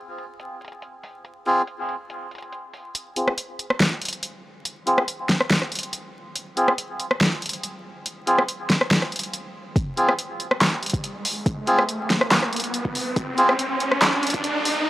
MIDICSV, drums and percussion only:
0, 0, Header, 1, 2, 480
1, 0, Start_track
1, 0, Key_signature, -4, "minor"
1, 0, Tempo, 425532
1, 1410, Time_signature, 4, 2, 24, 8
1, 16805, End_track
2, 0, Start_track
2, 0, Title_t, "Drums"
2, 207, Note_on_c, 9, 42, 52
2, 320, Note_off_c, 9, 42, 0
2, 447, Note_on_c, 9, 42, 77
2, 559, Note_off_c, 9, 42, 0
2, 689, Note_on_c, 9, 42, 47
2, 729, Note_off_c, 9, 42, 0
2, 729, Note_on_c, 9, 42, 69
2, 766, Note_off_c, 9, 42, 0
2, 766, Note_on_c, 9, 42, 81
2, 813, Note_off_c, 9, 42, 0
2, 813, Note_on_c, 9, 42, 49
2, 926, Note_off_c, 9, 42, 0
2, 928, Note_on_c, 9, 42, 78
2, 1041, Note_off_c, 9, 42, 0
2, 1168, Note_on_c, 9, 46, 92
2, 1281, Note_off_c, 9, 46, 0
2, 1407, Note_on_c, 9, 42, 77
2, 1519, Note_off_c, 9, 42, 0
2, 1648, Note_on_c, 9, 42, 51
2, 1761, Note_off_c, 9, 42, 0
2, 1887, Note_on_c, 9, 42, 78
2, 2000, Note_off_c, 9, 42, 0
2, 2129, Note_on_c, 9, 42, 52
2, 2241, Note_off_c, 9, 42, 0
2, 2367, Note_on_c, 9, 42, 81
2, 2480, Note_off_c, 9, 42, 0
2, 2609, Note_on_c, 9, 42, 53
2, 2652, Note_off_c, 9, 42, 0
2, 2652, Note_on_c, 9, 42, 69
2, 2688, Note_off_c, 9, 42, 0
2, 2688, Note_on_c, 9, 42, 81
2, 2735, Note_off_c, 9, 42, 0
2, 2735, Note_on_c, 9, 42, 54
2, 2848, Note_off_c, 9, 42, 0
2, 2849, Note_on_c, 9, 42, 79
2, 2961, Note_off_c, 9, 42, 0
2, 3086, Note_on_c, 9, 46, 91
2, 3199, Note_off_c, 9, 46, 0
2, 3327, Note_on_c, 9, 42, 82
2, 3440, Note_off_c, 9, 42, 0
2, 3568, Note_on_c, 9, 42, 53
2, 3681, Note_off_c, 9, 42, 0
2, 3695, Note_on_c, 9, 37, 71
2, 3808, Note_off_c, 9, 37, 0
2, 3809, Note_on_c, 9, 42, 81
2, 3922, Note_off_c, 9, 42, 0
2, 4051, Note_on_c, 9, 42, 52
2, 4164, Note_off_c, 9, 42, 0
2, 4176, Note_on_c, 9, 37, 71
2, 4289, Note_off_c, 9, 37, 0
2, 4289, Note_on_c, 9, 38, 116
2, 4289, Note_on_c, 9, 42, 80
2, 4401, Note_off_c, 9, 38, 0
2, 4401, Note_off_c, 9, 42, 0
2, 4529, Note_on_c, 9, 42, 54
2, 4572, Note_off_c, 9, 42, 0
2, 4572, Note_on_c, 9, 42, 69
2, 4608, Note_off_c, 9, 42, 0
2, 4608, Note_on_c, 9, 42, 83
2, 4656, Note_off_c, 9, 42, 0
2, 4656, Note_on_c, 9, 42, 51
2, 4769, Note_off_c, 9, 42, 0
2, 4770, Note_on_c, 9, 42, 82
2, 4882, Note_off_c, 9, 42, 0
2, 5249, Note_on_c, 9, 42, 79
2, 5361, Note_off_c, 9, 42, 0
2, 5491, Note_on_c, 9, 42, 49
2, 5604, Note_off_c, 9, 42, 0
2, 5616, Note_on_c, 9, 37, 75
2, 5729, Note_off_c, 9, 37, 0
2, 5729, Note_on_c, 9, 42, 76
2, 5842, Note_off_c, 9, 42, 0
2, 5968, Note_on_c, 9, 38, 63
2, 5968, Note_on_c, 9, 42, 52
2, 6081, Note_off_c, 9, 38, 0
2, 6081, Note_off_c, 9, 42, 0
2, 6096, Note_on_c, 9, 37, 76
2, 6208, Note_on_c, 9, 38, 118
2, 6208, Note_on_c, 9, 42, 75
2, 6209, Note_off_c, 9, 37, 0
2, 6321, Note_off_c, 9, 38, 0
2, 6321, Note_off_c, 9, 42, 0
2, 6336, Note_on_c, 9, 37, 46
2, 6449, Note_off_c, 9, 37, 0
2, 6449, Note_on_c, 9, 42, 51
2, 6490, Note_off_c, 9, 42, 0
2, 6490, Note_on_c, 9, 42, 63
2, 6528, Note_off_c, 9, 42, 0
2, 6528, Note_on_c, 9, 42, 80
2, 6578, Note_off_c, 9, 42, 0
2, 6578, Note_on_c, 9, 42, 51
2, 6688, Note_off_c, 9, 42, 0
2, 6688, Note_on_c, 9, 42, 78
2, 6801, Note_off_c, 9, 42, 0
2, 7169, Note_on_c, 9, 42, 74
2, 7282, Note_off_c, 9, 42, 0
2, 7410, Note_on_c, 9, 42, 50
2, 7523, Note_off_c, 9, 42, 0
2, 7536, Note_on_c, 9, 37, 81
2, 7649, Note_off_c, 9, 37, 0
2, 7650, Note_on_c, 9, 42, 74
2, 7763, Note_off_c, 9, 42, 0
2, 7890, Note_on_c, 9, 42, 53
2, 8003, Note_off_c, 9, 42, 0
2, 8017, Note_on_c, 9, 37, 77
2, 8130, Note_off_c, 9, 37, 0
2, 8130, Note_on_c, 9, 38, 124
2, 8130, Note_on_c, 9, 42, 76
2, 8243, Note_off_c, 9, 38, 0
2, 8243, Note_off_c, 9, 42, 0
2, 8370, Note_on_c, 9, 42, 46
2, 8411, Note_off_c, 9, 42, 0
2, 8411, Note_on_c, 9, 42, 62
2, 8451, Note_off_c, 9, 42, 0
2, 8451, Note_on_c, 9, 42, 79
2, 8497, Note_off_c, 9, 42, 0
2, 8497, Note_on_c, 9, 42, 51
2, 8610, Note_off_c, 9, 42, 0
2, 8611, Note_on_c, 9, 42, 75
2, 8724, Note_off_c, 9, 42, 0
2, 9090, Note_on_c, 9, 42, 74
2, 9203, Note_off_c, 9, 42, 0
2, 9331, Note_on_c, 9, 42, 50
2, 9444, Note_off_c, 9, 42, 0
2, 9458, Note_on_c, 9, 37, 79
2, 9571, Note_off_c, 9, 37, 0
2, 9571, Note_on_c, 9, 42, 72
2, 9684, Note_off_c, 9, 42, 0
2, 9810, Note_on_c, 9, 38, 64
2, 9810, Note_on_c, 9, 42, 50
2, 9923, Note_off_c, 9, 38, 0
2, 9923, Note_off_c, 9, 42, 0
2, 9938, Note_on_c, 9, 37, 76
2, 10049, Note_on_c, 9, 38, 124
2, 10049, Note_on_c, 9, 42, 72
2, 10051, Note_off_c, 9, 37, 0
2, 10162, Note_off_c, 9, 38, 0
2, 10162, Note_off_c, 9, 42, 0
2, 10176, Note_on_c, 9, 37, 53
2, 10288, Note_on_c, 9, 42, 45
2, 10289, Note_off_c, 9, 37, 0
2, 10330, Note_off_c, 9, 42, 0
2, 10330, Note_on_c, 9, 42, 62
2, 10367, Note_off_c, 9, 42, 0
2, 10367, Note_on_c, 9, 42, 80
2, 10415, Note_off_c, 9, 42, 0
2, 10415, Note_on_c, 9, 42, 48
2, 10528, Note_off_c, 9, 42, 0
2, 10529, Note_on_c, 9, 42, 71
2, 10642, Note_off_c, 9, 42, 0
2, 11007, Note_on_c, 9, 36, 108
2, 11011, Note_on_c, 9, 42, 76
2, 11120, Note_off_c, 9, 36, 0
2, 11123, Note_off_c, 9, 42, 0
2, 11250, Note_on_c, 9, 42, 49
2, 11363, Note_off_c, 9, 42, 0
2, 11377, Note_on_c, 9, 37, 81
2, 11490, Note_off_c, 9, 37, 0
2, 11490, Note_on_c, 9, 42, 73
2, 11603, Note_off_c, 9, 42, 0
2, 11730, Note_on_c, 9, 42, 52
2, 11842, Note_off_c, 9, 42, 0
2, 11856, Note_on_c, 9, 37, 81
2, 11969, Note_off_c, 9, 37, 0
2, 11970, Note_on_c, 9, 38, 113
2, 11970, Note_on_c, 9, 39, 88
2, 11970, Note_on_c, 9, 42, 74
2, 12083, Note_off_c, 9, 38, 0
2, 12083, Note_off_c, 9, 39, 0
2, 12083, Note_off_c, 9, 42, 0
2, 12211, Note_on_c, 9, 42, 49
2, 12252, Note_off_c, 9, 42, 0
2, 12252, Note_on_c, 9, 42, 65
2, 12290, Note_off_c, 9, 42, 0
2, 12290, Note_on_c, 9, 42, 77
2, 12333, Note_on_c, 9, 36, 59
2, 12337, Note_off_c, 9, 42, 0
2, 12337, Note_on_c, 9, 42, 51
2, 12446, Note_off_c, 9, 36, 0
2, 12450, Note_off_c, 9, 42, 0
2, 12450, Note_on_c, 9, 42, 78
2, 12563, Note_off_c, 9, 42, 0
2, 12690, Note_on_c, 9, 46, 98
2, 12802, Note_off_c, 9, 46, 0
2, 12927, Note_on_c, 9, 36, 106
2, 12928, Note_on_c, 9, 42, 83
2, 13040, Note_off_c, 9, 36, 0
2, 13041, Note_off_c, 9, 42, 0
2, 13167, Note_on_c, 9, 42, 52
2, 13280, Note_off_c, 9, 42, 0
2, 13294, Note_on_c, 9, 37, 88
2, 13407, Note_off_c, 9, 37, 0
2, 13409, Note_on_c, 9, 42, 73
2, 13522, Note_off_c, 9, 42, 0
2, 13649, Note_on_c, 9, 38, 64
2, 13649, Note_on_c, 9, 42, 50
2, 13762, Note_off_c, 9, 38, 0
2, 13762, Note_off_c, 9, 42, 0
2, 13774, Note_on_c, 9, 37, 83
2, 13887, Note_off_c, 9, 37, 0
2, 13888, Note_on_c, 9, 38, 112
2, 13888, Note_on_c, 9, 39, 85
2, 13888, Note_on_c, 9, 42, 80
2, 14001, Note_off_c, 9, 38, 0
2, 14001, Note_off_c, 9, 39, 0
2, 14001, Note_off_c, 9, 42, 0
2, 14015, Note_on_c, 9, 37, 56
2, 14128, Note_off_c, 9, 37, 0
2, 14129, Note_on_c, 9, 42, 50
2, 14171, Note_off_c, 9, 42, 0
2, 14171, Note_on_c, 9, 42, 66
2, 14209, Note_off_c, 9, 42, 0
2, 14209, Note_on_c, 9, 42, 81
2, 14255, Note_off_c, 9, 42, 0
2, 14255, Note_on_c, 9, 42, 51
2, 14368, Note_off_c, 9, 42, 0
2, 14368, Note_on_c, 9, 42, 76
2, 14481, Note_off_c, 9, 42, 0
2, 14494, Note_on_c, 9, 36, 62
2, 14607, Note_off_c, 9, 36, 0
2, 14609, Note_on_c, 9, 46, 99
2, 14722, Note_off_c, 9, 46, 0
2, 14848, Note_on_c, 9, 36, 111
2, 14848, Note_on_c, 9, 42, 87
2, 14961, Note_off_c, 9, 36, 0
2, 14961, Note_off_c, 9, 42, 0
2, 15090, Note_on_c, 9, 42, 54
2, 15203, Note_off_c, 9, 42, 0
2, 15216, Note_on_c, 9, 37, 80
2, 15329, Note_off_c, 9, 37, 0
2, 15331, Note_on_c, 9, 42, 77
2, 15443, Note_off_c, 9, 42, 0
2, 15570, Note_on_c, 9, 42, 56
2, 15683, Note_off_c, 9, 42, 0
2, 15696, Note_on_c, 9, 37, 78
2, 15809, Note_off_c, 9, 37, 0
2, 15810, Note_on_c, 9, 38, 110
2, 15810, Note_on_c, 9, 39, 87
2, 15810, Note_on_c, 9, 42, 84
2, 15923, Note_off_c, 9, 38, 0
2, 15923, Note_off_c, 9, 39, 0
2, 15923, Note_off_c, 9, 42, 0
2, 16050, Note_on_c, 9, 42, 53
2, 16092, Note_off_c, 9, 42, 0
2, 16092, Note_on_c, 9, 42, 69
2, 16130, Note_off_c, 9, 42, 0
2, 16130, Note_on_c, 9, 42, 81
2, 16175, Note_off_c, 9, 42, 0
2, 16175, Note_on_c, 9, 42, 54
2, 16176, Note_on_c, 9, 36, 57
2, 16287, Note_off_c, 9, 42, 0
2, 16287, Note_on_c, 9, 42, 79
2, 16288, Note_off_c, 9, 36, 0
2, 16400, Note_off_c, 9, 42, 0
2, 16528, Note_on_c, 9, 46, 96
2, 16641, Note_off_c, 9, 46, 0
2, 16805, End_track
0, 0, End_of_file